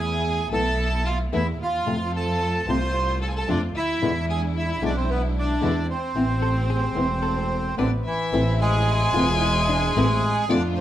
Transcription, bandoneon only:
0.00 G#4 G#5
0.53 A4 A5
1.06 F4 F5
1.35 E4 E5
1.63 F4 F5
2.16 A4 A5
2.69 C5 C6
3.22 A4 A5
3.27 G#5
3.36 A4 A5
3.49 D4 D5
3.77 E4 E5
4.30 G#4 G#5
4.58 E4 E5
4.72 E4 E5
4.85 D4 D5
4.97 C4 C5
5.10 B3 B4
5.38 D4 D5
5.91 C4 C5
7.78 D3 D4
8.06 E3 E4
8.61 G#3 G#4
10.51 D3 D4

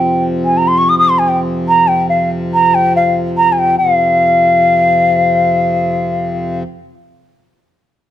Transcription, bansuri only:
Already playing: G5
0.45 G#5
0.57 A#5
0.68 C6
0.78 C#6
0.89 D#6
0.98 D#6
1.09 C6
1.19 G#5
1.28 G5
1.68 A#5
1.88 G5
2.09 F5
2.54 A#5
2.75 G5
2.96 F5
3.37 A#5
3.52 G#5
3.59 G5
3.78 F5

